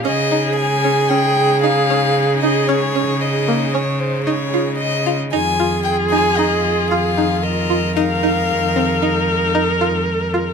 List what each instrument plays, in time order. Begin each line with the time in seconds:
0.04 string section C#3 G#3 D#4, cello C#3, synth pluck C#4, viola G#4, violin D#5
0.31 synth pluck D#4
0.56 violin G#5
0.84 synth pluck C#4
1.09 synth pluck C#4, violin G5
1.62 synth pluck D#4, violin F5
1.90 synth pluck C#4
2.41 synth pluck D#4, violin D#5
2.67 string section G#3, synth pluck C#4, violin C#5
2.95 synth pluck C#4
3.21 violin D#5
3.48 synth pluck A#3
3.73 synth pluck C#4, violin C#5
4.00 violin C5
4.25 synth pluck D#4, violin C#5
4.54 synth pluck F4
4.78 violin D#5
5.06 synth pluck F4
5.32 cello F2, string section D#3 G#3 F4, synth pluck D#4, viola G#4, violin G#5
5.60 synth pluck F4
5.84 violin G5
6.10 synth pluck D#4, violin G#5
6.37 synth pluck D#4, violin D#5
6.90 synth pluck F4, violin F5
7.17 synth pluck D#4
7.43 viola A#4, violin D#5
7.70 synth pluck F4
7.96 synth pluck D#4, string section D#4, violin F5
8.23 synth pluck D#4
8.76 synth pluck C4
9.02 synth pluck D#4
9.55 synth pluck D#4
9.81 synth pluck F4
10.34 synth pluck F4